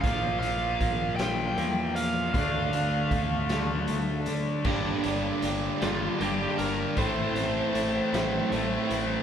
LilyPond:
<<
  \new Staff \with { instrumentName = "Lead electric guitar" } { \time 6/8 \key g \dorian \tempo 4. = 52 f''8 f''4 g''4 f''8 | f''2~ f''8 r8 | r4. f'8 g'8 bes'8 | c''2. | }
  \new Staff \with { instrumentName = "Clean electric guitar" } { \time 6/8 \key g \dorian bes,8 f8 bes8 f'8 bes8 des'8 | d8 d8 a8 f'8 a8 d'8 | <g, d g bes d' g'>8 <g bes d' g'>8 <g bes d' g'>8 <g bes d' g'>8 <g bes d' g'>8 <g bes d' g'>8 | <a, e a c' e'>8 <a c' e'>8 <e a c' e'>8 <a c' e'>8 <e a c' e'>8 <a c' e'>8 | }
  \new Staff \with { instrumentName = "Distorted electric guitar" } { \clef bass \time 6/8 \key g \dorian r2. | r2. | <g, d g bes d'>4. <g, d g bes d'>4. | <a, e a c' e'>4. <a, e a c' e'>4. | }
  \new Staff \with { instrumentName = "Overdriven electric guitar" } { \clef bass \time 6/8 \key g \dorian <bes, f bes>2. | <d a d'>2. | <g, d g>2 <g, d g>4 | <a, e a>2 <a, e a>4 | }
  \new Staff \with { instrumentName = "Picked electric bass" } { \clef bass \time 6/8 \key g \dorian bes,,4 bes,,8 bes,,8 e,4 | d,8 d,8 d,8 d,8 d,8 d8 | g,,8 g,,8 g,,8 g,,8 g,,8 g,,8 | a,,8 a,,8 a,,8 a,,8 a,,8 a,,8 | }
  \new DrumStaff \with { instrumentName = "Drums" } \drummode { \time 6/8 <hh bd>8 hh8 <hh bd>8 <hh sn>8 hh8 hh8 | <hh bd>8 hh8 <hh bd>8 <hh sn>8 hh8 hh8 | <cymc bd>8 hh8 hh8 <hh sn>8 hh8 hh8 | <hh bd>8 hh8 hh8 <hh sn>8 hh8 hh8 | }
>>